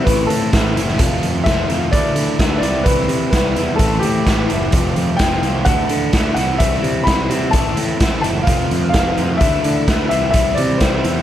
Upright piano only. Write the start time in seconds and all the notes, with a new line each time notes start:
0.04 B4
0.27 A4
1.44 E5
1.92 D5
2.58 D5
2.83 B4
3.30 B4
3.76 A4
3.99 G4
5.17 G5
5.65 F#5
6.34 F#5
6.58 E5
7.03 B5
7.51 A5
8.21 A5
8.43 F5
8.89 F5
9.37 E5
10.09 E5
10.31 E5
10.55 D5
10.78 C5